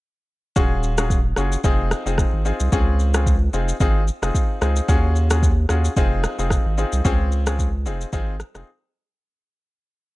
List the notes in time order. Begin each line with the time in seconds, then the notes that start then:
0.56 D#1 C#4 F4 F#4 G#4, kick, shaker
0.83 shaker
0.98 C#4 F4 F#4 G#4, cross-stick, shaker
1.10 kick, shaker
1.36 F#1 C#4 F4 F#4 G#4, cross-stick, shaker
1.52 shaker
1.64 F1 C4 D#4 F4 G#4, kick, shaker
1.91 cross-stick, shaker
2.06 F1 C4 D#4 F4 G#4, shaker
2.18 kick, cross-stick, shaker
2.33 G#1
2.45 C4 D#4 F4 G#4, shaker
2.60 C2, shaker
2.72 C#2 C4 C#4 F4 G#4, kick, shaker
2.99 shaker
3.14 C4 C#4 F4 G#4, cross-stick, shaker
3.26 kick, shaker
3.53 F1 C4 D#4 F4 G#4, shaker
3.68 shaker
3.80 G#1 C4 D#4 F4 G#4, kick, shaker
4.08 shaker
4.22 F1 C4 D#4 F4 G#4, cross-stick, shaker
4.35 kick, shaker
4.61 C#2 C4 D#4 F4 G#4, cross-stick, shaker
4.76 shaker
4.88 D#2 C#4 F4 F#4 G#4, kick, shaker
5.16 shaker
5.30 C#4 F4 F#4 G#4, cross-stick, shaker
5.43 kick, shaker
5.69 D#2 C#4 F4 F#4 G#4, cross-stick, shaker
5.85 shaker
5.96 F1 C4 D#4 F4 G#4, kick, shaker
6.24 cross-stick, shaker
6.39 F1 C4 D#4 F4 G#4, shaker
6.50 kick, cross-stick, shaker
6.66 G#1
6.78 C4 D#4 F4 G#4, shaker
6.92 C2, shaker
7.05 C#2 C4 C#4 F4 G#4, kick, shaker
7.32 shaker
7.46 C4 C#4 F4 G#4, cross-stick, shaker
7.59 kick, shaker
7.86 F1 C4 D#4 F4 G#4, shaker
8.01 shaker
8.13 G#1 C4 D#4 F4 G#4, kick, shaker
8.40 cross-stick, shaker
8.55 F1 C4 D#4 F4 G#4, cross-stick, shaker